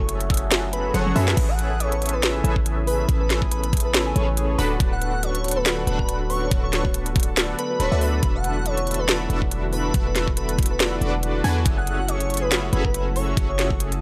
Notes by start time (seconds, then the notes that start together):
Already playing: F#1 F#3 A3 C#4 E4 F#4 G#4 A4 E5 G#5
0.09 closed hi-hat
0.21 closed hi-hat
0.29 F#3 E4 G#4 A4, kick, closed hi-hat
0.34 closed hi-hat
0.37 closed hi-hat
0.51 snare, closed hi-hat
0.73 B4, closed hi-hat
0.94 F#1 C#4 F#4 G#4 A4 C#5 F#5, closed hi-hat, high tom
1.06 high tom
1.15 F#2 F#3 C#4 E4 F#4 G#4 A4 B4 E5, open hi-hat
1.28 snare
1.37 A1 C#3 A3 B3 C#4 E4 G#4 A4 B4 E5, kick, closed hi-hat, crash
1.49 A4 F#5
1.58 B4, closed hi-hat
1.70 G#4
1.80 A4 C#5, closed hi-hat
1.92 B4, closed hi-hat
2.01 G#4, closed hi-hat
2.06 closed hi-hat
2.09 B4, closed hi-hat
2.13 A4
2.23 C#5, snare, closed hi-hat
2.35 G#5
2.44 A1 C#4 G#4 A4 B4 E5, closed hi-hat
2.56 B4, kick
2.66 G#4, closed hi-hat
2.78 G#4
2.87 B4, open hi-hat
2.99 G#4
3.08 A1 C#4 G#4 A4 B4 E5, kick, closed hi-hat
3.20 A4 B4
3.30 B4, snare, closed hi-hat
3.42 G#4, kick
3.51 A4 B4, closed hi-hat
3.63 B4, closed hi-hat
3.73 G#4, kick, closed hi-hat
3.77 closed hi-hat
3.80 closed hi-hat
3.85 A4 B4
3.94 B4 C#5, snare, closed hi-hat
4.06 G#5
4.16 A1 C#4 G#4 A4 B4 C#5, closed hi-hat
4.27 B4
4.37 G#4, closed hi-hat
4.49 G#4
4.58 D1 D3 F#3 D4 F#4 A4 B4 B5, open hi-hat
4.71 F#4
4.80 D1 D4 F#4 A4 B4 F#5, kick, closed hi-hat
4.92 A4 F#5
5.01 B4, closed hi-hat
5.13 F#4
5.23 A4 C#5, closed hi-hat
5.35 B4, closed hi-hat
5.44 F#4, closed hi-hat
5.48 closed hi-hat
5.51 closed hi-hat
5.56 A4 B4
5.65 D5, snare, closed hi-hat
5.77 A5
5.87 D1 D4 F#4 A4 B4 F#5, closed hi-hat
5.99 B4, kick
6.09 F#4, closed hi-hat
6.20 F#4
6.30 B4 C#5, open hi-hat
6.42 F#4
6.51 D1 D4 F#4 A4 B4 F#5, kick, closed hi-hat
6.63 A4 C#5
6.73 B4, snare, closed hi-hat
6.85 F#4, kick
6.94 A4, closed hi-hat
7.06 B4, closed hi-hat
7.15 F#4, kick, closed hi-hat
7.20 closed hi-hat
7.23 closed hi-hat
7.28 A4
7.37 D5, snare, closed hi-hat
7.49 A5
7.58 A4 B4, closed hi-hat
7.70 B4
7.80 D1 D4 F#4 A4 B4 C#5 B5, closed hi-hat
7.92 D2 D4 F#4 A4 B4 E5
8.01 B4, open hi-hat
8.13 F#4
8.23 E1 D3 D4 E4 F#4 A4 B4 E5, kick, closed hi-hat
8.35 A4 F#5
8.44 B4, closed hi-hat
8.56 F#4
8.66 A4 C#5, closed hi-hat
8.77 B4, closed hi-hat
8.87 F#4, closed hi-hat
8.91 closed hi-hat
8.94 closed hi-hat
8.99 A4 B4
9.08 D5, snare, closed hi-hat
9.20 F#5
9.30 E1 D4 F#4 A4 B4 E5, closed hi-hat
9.42 B4, kick
9.51 F#4, closed hi-hat
9.63 F#4
9.72 B4, open hi-hat
9.84 F#4
9.94 E1 F#4 E5, kick, closed hi-hat
10.06 A4 B4
10.15 B4, snare, closed hi-hat
10.27 F#4, kick
10.37 A4 B4, closed hi-hat
10.49 B4, closed hi-hat
10.58 F#4, kick, closed hi-hat
10.63 closed hi-hat
10.66 closed hi-hat
10.70 A4 B4
10.80 B4 D5, snare, closed hi-hat
10.92 F#5
11.01 E1 D4 F#4 A4 B4 D5, closed hi-hat
11.13 B4
11.23 F#4, closed hi-hat
11.34 F#4
11.44 E2 D4 F#4 A4 B4 G#5, open hi-hat
11.56 F#4
11.65 F#1 C#3 A3 C#4 F#4 G#4 A4 E5, kick, closed hi-hat
11.77 G#4 F#5
11.87 A4, closed hi-hat
11.99 F#4
12.08 G#4 C#5, closed hi-hat
12.20 A4, closed hi-hat
12.30 F#4, closed hi-hat
12.34 closed hi-hat
12.37 closed hi-hat
12.41 G#4 B4
12.51 C#5, snare, closed hi-hat
12.63 F#5
12.72 F#1 C#4 F#4 G#4 A4 B4 E5, closed hi-hat
12.84 A4 B4, kick
12.94 F#4, closed hi-hat
13.06 F#4
13.16 A4 C#5, open hi-hat
13.27 F#4
13.37 F#1 C#4 F#4 G#4 A4 E5, kick, closed hi-hat
13.49 G#4 C#5
13.58 A4, snare, closed hi-hat
13.70 F#4, kick
13.80 G#4, closed hi-hat
13.92 A4, closed hi-hat